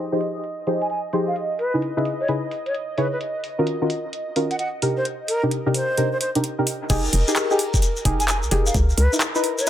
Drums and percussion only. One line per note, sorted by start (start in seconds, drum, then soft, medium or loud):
0.21 open hi-hat medium
0.44 closed hi-hat medium
0.67 open hi-hat loud
0.82 closed hi-hat medium
0.90 closed hi-hat medium
1.13 open hi-hat loud
1.36 closed hi-hat medium
1.59 open hi-hat loud
1.82 closed hi-hat medium
2.05 open hi-hat medium
2.28 closed hi-hat medium
2.51 open hi-hat loud
2.66 closed hi-hat medium
2.75 closed hi-hat medium
2.98 open hi-hat loud
3.21 closed hi-hat medium
3.44 open hi-hat loud
3.67 closed hi-hat medium
3.90 open hi-hat loud
4.13 closed hi-hat medium
4.36 open hi-hat loud
4.51 closed hi-hat medium
4.59 closed hi-hat medium
4.82 open hi-hat loud
5.05 closed hi-hat medium
5.28 open hi-hat loud
5.51 closed hi-hat medium
5.74 open hi-hat loud
5.98 closed hi-hat medium
6.21 open hi-hat loud
6.35 closed hi-hat medium
6.44 closed hi-hat medium
6.67 open hi-hat loud
6.90 kick loud
6.90 closed hi-hat medium
6.90 crash loud
6.90 shekere medium
7.05 shekere soft
7.13 open hi-hat loud
7.28 shekere medium
7.36 clap loud
7.36 closed hi-hat medium
7.36 shekere medium
7.51 shekere soft
7.59 open hi-hat loud
7.74 kick loud
7.74 shekere medium
7.82 closed hi-hat medium
7.82 shekere medium
7.96 shekere soft
8.05 kick loud
8.05 open hi-hat loud
8.20 closed hi-hat medium
8.20 shekere medium
8.28 clap loud
8.28 closed hi-hat medium
8.28 shekere medium
8.43 shekere soft
8.51 snare soft
8.51 open hi-hat loud
8.66 shekere medium
8.74 kick loud
8.74 closed hi-hat medium
8.74 shekere medium
8.90 shekere soft
8.98 open hi-hat loud
9.13 shekere medium
9.21 clap loud
9.21 closed hi-hat medium
9.21 shekere medium
9.35 shekere soft
9.44 open hi-hat loud
9.58 shekere medium